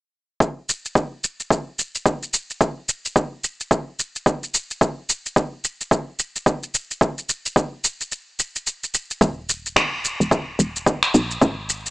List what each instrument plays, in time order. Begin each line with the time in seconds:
0.40 kick, shaker
0.69 shaker
0.85 shaker
0.95 kick, shaker
1.24 shaker
1.40 shaker
1.50 kick, shaker
1.79 shaker
1.95 shaker
2.06 kick, shaker
2.23 shaker
2.34 shaker
2.50 shaker
2.61 kick, shaker
2.89 shaker
3.05 shaker
3.16 kick, shaker
3.44 shaker
3.61 shaker
3.71 kick, shaker
3.99 shaker
4.16 shaker
4.26 kick, shaker
4.43 shaker
4.54 shaker
4.71 shaker
4.81 kick, shaker
5.09 shaker
5.26 shaker
5.36 kick, shaker
5.64 shaker
5.81 shaker
5.91 kick, shaker
6.19 shaker
6.36 shaker
6.46 kick, shaker
6.63 shaker
6.75 shaker
6.91 shaker
7.01 kick, shaker
7.18 shaker
7.29 shaker
7.46 shaker
7.56 kick, shaker
7.84 shaker
8.01 shaker
8.12 shaker
8.39 shaker
8.56 shaker
8.67 shaker
8.84 shaker
8.94 shaker
9.11 shaker
9.21 fm bass D#1, kick, shaker
9.49 shaker
9.66 shaker
9.76 finger snap, kick, shaker
10.05 shaker
10.20 fm bass D#1, shaker
10.31 kick, shaker
10.59 fm bass D#1, shaker
10.76 shaker
10.86 kick, shaker
11.03 finger snap, shaker
11.14 fm bass A#1, shaker
11.31 shaker
11.42 fm bass G#1, kick, shaker
11.70 shaker
11.86 shaker